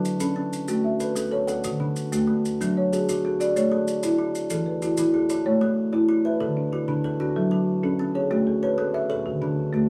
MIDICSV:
0, 0, Header, 1, 4, 480
1, 0, Start_track
1, 0, Key_signature, 3, "major"
1, 0, Tempo, 317628
1, 2481, Time_signature, 12, 3, 24, 8
1, 14946, End_track
2, 0, Start_track
2, 0, Title_t, "Kalimba"
2, 0, Program_c, 0, 108
2, 0, Note_on_c, 0, 54, 82
2, 308, Note_on_c, 0, 69, 63
2, 314, Note_off_c, 0, 54, 0
2, 541, Note_on_c, 0, 61, 77
2, 1030, Note_off_c, 0, 61, 0
2, 1031, Note_on_c, 0, 66, 72
2, 1034, Note_off_c, 0, 69, 0
2, 1274, Note_off_c, 0, 66, 0
2, 1513, Note_on_c, 0, 71, 60
2, 1745, Note_on_c, 0, 57, 81
2, 1987, Note_on_c, 0, 69, 72
2, 2209, Note_off_c, 0, 69, 0
2, 2227, Note_on_c, 0, 69, 77
2, 2228, Note_on_c, 0, 78, 66
2, 2234, Note_off_c, 0, 57, 0
2, 2238, Note_off_c, 0, 71, 0
2, 2716, Note_off_c, 0, 69, 0
2, 2719, Note_on_c, 0, 50, 80
2, 2957, Note_off_c, 0, 78, 0
2, 3202, Note_off_c, 0, 50, 0
2, 3211, Note_on_c, 0, 66, 65
2, 3436, Note_on_c, 0, 57, 75
2, 3922, Note_off_c, 0, 57, 0
2, 3930, Note_off_c, 0, 66, 0
2, 3939, Note_on_c, 0, 62, 79
2, 4174, Note_off_c, 0, 62, 0
2, 4422, Note_on_c, 0, 68, 68
2, 4669, Note_on_c, 0, 54, 75
2, 4908, Note_on_c, 0, 66, 68
2, 5121, Note_off_c, 0, 66, 0
2, 5137, Note_off_c, 0, 68, 0
2, 5139, Note_on_c, 0, 66, 73
2, 5140, Note_off_c, 0, 54, 0
2, 5144, Note_on_c, 0, 74, 63
2, 5616, Note_off_c, 0, 66, 0
2, 5616, Note_on_c, 0, 57, 80
2, 5858, Note_off_c, 0, 74, 0
2, 6087, Note_on_c, 0, 73, 61
2, 6094, Note_off_c, 0, 57, 0
2, 6324, Note_on_c, 0, 64, 72
2, 6809, Note_off_c, 0, 64, 0
2, 6811, Note_off_c, 0, 73, 0
2, 6822, Note_on_c, 0, 69, 75
2, 7058, Note_off_c, 0, 69, 0
2, 7286, Note_on_c, 0, 66, 63
2, 7524, Note_on_c, 0, 52, 76
2, 7765, Note_on_c, 0, 64, 71
2, 7990, Note_off_c, 0, 64, 0
2, 8008, Note_on_c, 0, 64, 73
2, 8009, Note_off_c, 0, 52, 0
2, 8010, Note_off_c, 0, 66, 0
2, 8011, Note_on_c, 0, 73, 60
2, 8482, Note_on_c, 0, 57, 83
2, 8491, Note_off_c, 0, 64, 0
2, 8732, Note_off_c, 0, 73, 0
2, 8956, Note_on_c, 0, 73, 68
2, 8968, Note_off_c, 0, 57, 0
2, 9196, Note_on_c, 0, 64, 79
2, 9445, Note_on_c, 0, 71, 67
2, 9678, Note_on_c, 0, 69, 83
2, 9684, Note_off_c, 0, 64, 0
2, 9684, Note_off_c, 0, 73, 0
2, 9925, Note_off_c, 0, 69, 0
2, 10168, Note_off_c, 0, 71, 0
2, 10168, Note_on_c, 0, 64, 70
2, 10397, Note_on_c, 0, 50, 84
2, 10643, Note_on_c, 0, 69, 72
2, 10880, Note_on_c, 0, 62, 84
2, 10881, Note_on_c, 0, 66, 64
2, 10883, Note_off_c, 0, 50, 0
2, 10888, Note_off_c, 0, 64, 0
2, 11351, Note_on_c, 0, 54, 82
2, 11364, Note_off_c, 0, 62, 0
2, 11365, Note_off_c, 0, 69, 0
2, 11604, Note_off_c, 0, 66, 0
2, 11838, Note_off_c, 0, 54, 0
2, 11840, Note_on_c, 0, 69, 66
2, 12079, Note_on_c, 0, 61, 84
2, 12321, Note_on_c, 0, 68, 66
2, 12557, Note_on_c, 0, 66, 81
2, 12561, Note_off_c, 0, 69, 0
2, 12562, Note_off_c, 0, 61, 0
2, 12800, Note_off_c, 0, 66, 0
2, 13038, Note_on_c, 0, 71, 70
2, 13041, Note_off_c, 0, 68, 0
2, 13266, Note_on_c, 0, 57, 86
2, 13515, Note_on_c, 0, 76, 73
2, 13747, Note_on_c, 0, 69, 82
2, 13748, Note_on_c, 0, 73, 65
2, 13753, Note_off_c, 0, 57, 0
2, 13758, Note_off_c, 0, 71, 0
2, 14232, Note_off_c, 0, 69, 0
2, 14232, Note_on_c, 0, 50, 83
2, 14236, Note_off_c, 0, 76, 0
2, 14471, Note_off_c, 0, 73, 0
2, 14714, Note_off_c, 0, 50, 0
2, 14717, Note_on_c, 0, 66, 67
2, 14946, Note_off_c, 0, 66, 0
2, 14946, End_track
3, 0, Start_track
3, 0, Title_t, "Marimba"
3, 0, Program_c, 1, 12
3, 0, Note_on_c, 1, 66, 61
3, 0, Note_on_c, 1, 69, 70
3, 309, Note_on_c, 1, 61, 84
3, 318, Note_off_c, 1, 69, 0
3, 557, Note_off_c, 1, 66, 0
3, 793, Note_off_c, 1, 61, 0
3, 1034, Note_on_c, 1, 57, 75
3, 1275, Note_on_c, 1, 76, 65
3, 1513, Note_on_c, 1, 69, 66
3, 1517, Note_off_c, 1, 57, 0
3, 1740, Note_off_c, 1, 69, 0
3, 1758, Note_on_c, 1, 69, 77
3, 1999, Note_off_c, 1, 76, 0
3, 1999, Note_on_c, 1, 73, 68
3, 2240, Note_off_c, 1, 69, 0
3, 2485, Note_on_c, 1, 66, 69
3, 2486, Note_on_c, 1, 50, 80
3, 2722, Note_off_c, 1, 73, 0
3, 2726, Note_on_c, 1, 62, 61
3, 2965, Note_off_c, 1, 50, 0
3, 3206, Note_off_c, 1, 66, 0
3, 3208, Note_on_c, 1, 57, 86
3, 3447, Note_off_c, 1, 62, 0
3, 3688, Note_off_c, 1, 57, 0
3, 3946, Note_on_c, 1, 54, 78
3, 4189, Note_on_c, 1, 73, 67
3, 4418, Note_off_c, 1, 54, 0
3, 4432, Note_on_c, 1, 66, 63
3, 4649, Note_off_c, 1, 66, 0
3, 4667, Note_on_c, 1, 66, 78
3, 4900, Note_off_c, 1, 73, 0
3, 4905, Note_on_c, 1, 69, 62
3, 5139, Note_off_c, 1, 66, 0
3, 5386, Note_on_c, 1, 57, 77
3, 5387, Note_on_c, 1, 73, 73
3, 5601, Note_off_c, 1, 69, 0
3, 5620, Note_on_c, 1, 69, 62
3, 5859, Note_off_c, 1, 57, 0
3, 6099, Note_on_c, 1, 64, 75
3, 6100, Note_off_c, 1, 73, 0
3, 6337, Note_off_c, 1, 69, 0
3, 6576, Note_off_c, 1, 64, 0
3, 6811, Note_on_c, 1, 52, 78
3, 7046, Note_on_c, 1, 71, 66
3, 7289, Note_on_c, 1, 64, 62
3, 7292, Note_off_c, 1, 52, 0
3, 7520, Note_off_c, 1, 64, 0
3, 7538, Note_on_c, 1, 64, 75
3, 7770, Note_off_c, 1, 71, 0
3, 7776, Note_on_c, 1, 68, 61
3, 8016, Note_off_c, 1, 64, 0
3, 8249, Note_on_c, 1, 73, 74
3, 8250, Note_on_c, 1, 57, 89
3, 8487, Note_on_c, 1, 69, 63
3, 8495, Note_off_c, 1, 68, 0
3, 8732, Note_off_c, 1, 57, 0
3, 8964, Note_on_c, 1, 64, 84
3, 8971, Note_off_c, 1, 73, 0
3, 9210, Note_off_c, 1, 69, 0
3, 9448, Note_off_c, 1, 64, 0
3, 9448, Note_on_c, 1, 76, 61
3, 9682, Note_on_c, 1, 50, 86
3, 9928, Note_on_c, 1, 62, 71
3, 9930, Note_off_c, 1, 76, 0
3, 10162, Note_on_c, 1, 66, 67
3, 10167, Note_off_c, 1, 50, 0
3, 10388, Note_off_c, 1, 62, 0
3, 10406, Note_on_c, 1, 62, 83
3, 10646, Note_on_c, 1, 69, 70
3, 10885, Note_off_c, 1, 66, 0
3, 10888, Note_off_c, 1, 62, 0
3, 11107, Note_off_c, 1, 69, 0
3, 11125, Note_on_c, 1, 69, 70
3, 11129, Note_on_c, 1, 54, 89
3, 11360, Note_on_c, 1, 66, 63
3, 11608, Note_off_c, 1, 54, 0
3, 11838, Note_on_c, 1, 61, 85
3, 11845, Note_off_c, 1, 69, 0
3, 12082, Note_off_c, 1, 66, 0
3, 12316, Note_on_c, 1, 73, 60
3, 12321, Note_off_c, 1, 61, 0
3, 12554, Note_on_c, 1, 57, 81
3, 12799, Note_off_c, 1, 73, 0
3, 12799, Note_on_c, 1, 69, 74
3, 13037, Note_on_c, 1, 73, 65
3, 13038, Note_off_c, 1, 57, 0
3, 13258, Note_off_c, 1, 69, 0
3, 13277, Note_on_c, 1, 69, 81
3, 13510, Note_on_c, 1, 76, 67
3, 13758, Note_off_c, 1, 69, 0
3, 13758, Note_off_c, 1, 73, 0
3, 13990, Note_on_c, 1, 50, 80
3, 13990, Note_on_c, 1, 66, 75
3, 14229, Note_on_c, 1, 62, 65
3, 14233, Note_off_c, 1, 76, 0
3, 14473, Note_off_c, 1, 50, 0
3, 14699, Note_on_c, 1, 57, 88
3, 14712, Note_off_c, 1, 66, 0
3, 14946, Note_off_c, 1, 57, 0
3, 14946, Note_off_c, 1, 62, 0
3, 14946, End_track
4, 0, Start_track
4, 0, Title_t, "Drums"
4, 77, Note_on_c, 9, 70, 59
4, 228, Note_off_c, 9, 70, 0
4, 304, Note_on_c, 9, 70, 70
4, 455, Note_off_c, 9, 70, 0
4, 801, Note_on_c, 9, 70, 56
4, 952, Note_off_c, 9, 70, 0
4, 1027, Note_on_c, 9, 70, 74
4, 1178, Note_off_c, 9, 70, 0
4, 1512, Note_on_c, 9, 70, 57
4, 1663, Note_off_c, 9, 70, 0
4, 1755, Note_on_c, 9, 70, 69
4, 1906, Note_off_c, 9, 70, 0
4, 2240, Note_on_c, 9, 70, 52
4, 2391, Note_off_c, 9, 70, 0
4, 2478, Note_on_c, 9, 70, 70
4, 2629, Note_off_c, 9, 70, 0
4, 2965, Note_on_c, 9, 70, 52
4, 3116, Note_off_c, 9, 70, 0
4, 3212, Note_on_c, 9, 70, 69
4, 3363, Note_off_c, 9, 70, 0
4, 3707, Note_on_c, 9, 70, 51
4, 3859, Note_off_c, 9, 70, 0
4, 3949, Note_on_c, 9, 70, 70
4, 4100, Note_off_c, 9, 70, 0
4, 4429, Note_on_c, 9, 70, 55
4, 4580, Note_off_c, 9, 70, 0
4, 4667, Note_on_c, 9, 70, 70
4, 4818, Note_off_c, 9, 70, 0
4, 5149, Note_on_c, 9, 70, 52
4, 5300, Note_off_c, 9, 70, 0
4, 5387, Note_on_c, 9, 70, 71
4, 5539, Note_off_c, 9, 70, 0
4, 5858, Note_on_c, 9, 70, 60
4, 6009, Note_off_c, 9, 70, 0
4, 6091, Note_on_c, 9, 70, 70
4, 6242, Note_off_c, 9, 70, 0
4, 6574, Note_on_c, 9, 70, 54
4, 6725, Note_off_c, 9, 70, 0
4, 6803, Note_on_c, 9, 70, 86
4, 6954, Note_off_c, 9, 70, 0
4, 7284, Note_on_c, 9, 70, 66
4, 7435, Note_off_c, 9, 70, 0
4, 7515, Note_on_c, 9, 70, 76
4, 7666, Note_off_c, 9, 70, 0
4, 8001, Note_on_c, 9, 70, 63
4, 8152, Note_off_c, 9, 70, 0
4, 14946, End_track
0, 0, End_of_file